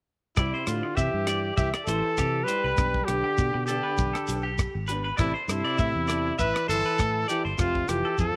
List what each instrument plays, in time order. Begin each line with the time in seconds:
0.37 fingered electric bass C2, trombone C3, nylon-string guitar G3 C4 E4 G4, trumpet E4, clean electric guitar D5, kick, cross-stick, shekere
0.54 clean electric guitar C5
0.66 fingered electric bass A2, trombone D3, nylon-string guitar C4 E4 G4, trumpet F4, cross-stick, closed hi-hat, shekere
0.83 muted clean electric guitar stroke
0.96 fingered electric bass C3, trombone E3, trumpet G4, clean electric guitar E5, kick, shekere
1.14 fingered electric bass G2
1.27 nylon-string guitar C4 E4 G4, clean electric guitar D5, cross-stick, closed hi-hat, shekere
1.56 fingered electric bass C2, trombone E3, trumpet G4, clean electric guitar E5, kick, shekere
1.74 clean electric guitar D5, cross-stick
1.86 fingered electric bass A1, trombone E3, nylon-string guitar E4 G4, trumpet A4, clean electric guitar C5, closed hi-hat, shekere
1.90 nylon-string guitar C4
2.18 fingered electric bass C3, clean electric guitar G4, kick, cross-stick, shekere
2.44 trombone G3, nylon-string guitar G4, trumpet B4, clean electric guitar C5
2.48 nylon-string guitar C4 E4, closed hi-hat, shekere
2.64 fingered electric bass C2, clean electric guitar B4
2.77 fingered electric bass B1, nylon-string guitar G3 B3 D4 G4, kick, cross-stick, shekere
2.94 kick
3.05 fingered electric bass B1, trombone D3, trumpet G4, nylon-string guitar G4, cross-stick, closed hi-hat
3.09 nylon-string guitar B3 D4
3.24 clean electric guitar G4
3.38 fingered electric bass B2, kick, shekere
3.54 fingered electric bass B2, muted clean electric guitar stroke
3.66 trombone D3, nylon-string guitar D4 G4, trumpet G4, clean electric guitar A4, closed hi-hat, shekere
3.71 nylon-string guitar B3
3.83 clean electric guitar B4
3.97 fingered electric bass B1, kick, shekere
4.13 clean electric guitar A4, cross-stick
4.27 fingered electric bass B1, nylon-string guitar B3 D4 G4, closed hi-hat, shekere
4.43 clean electric guitar G4
4.58 kick, cross-stick, shekere
4.75 fingered electric bass G#1
4.88 nylon-string guitar B3 D4 G4, clean electric guitar B4, closed hi-hat, shekere
5.04 clean electric guitar B4
5.17 fingered electric bass A1, trombone C3, nylon-string guitar C4 E4 A4, trumpet E4, clean electric guitar D5, kick, cross-stick, shekere
5.34 clean electric guitar C5
5.48 fingered electric bass G2, trombone C3, trumpet E4, nylon-string guitar E4 A4, cross-stick, closed hi-hat, shekere
5.65 clean electric guitar D5
5.78 fingered electric bass A2, clean electric guitar E5, kick, shekere
5.95 fingered electric bass E2
6.08 nylon-string guitar E4 A4, clean electric guitar D5, cross-stick, closed hi-hat, shekere
6.39 fingered electric bass A1, trumpet B4, clean electric guitar E5, kick, shekere
6.43 trombone E3
6.54 clean electric guitar D5, cross-stick
6.68 fingered electric bass G1, trombone E3, nylon-string guitar E4 A4, trumpet A4, clean electric guitar C5, closed hi-hat, shekere
6.86 clean electric guitar B4
6.98 fingered electric bass A2, clean electric guitar A4, kick, cross-stick, shekere
7.28 trombone E3, nylon-string guitar E4 A4, trumpet G4, clean electric guitar D5, closed hi-hat, shekere
7.45 fingered electric bass G1, clean electric guitar C5
7.58 fingered electric bass F1, trombone C3, nylon-string guitar F3 C4 F4 A4, trumpet F4, kick, cross-stick, shekere
7.75 kick
7.88 fingered electric bass F1, trombone E3, nylon-string guitar C4 F4 A4, trumpet G4, cross-stick, closed hi-hat, shekere
8.05 clean electric guitar A4
8.18 fingered electric bass F2, trombone F3, trumpet A4, kick, shekere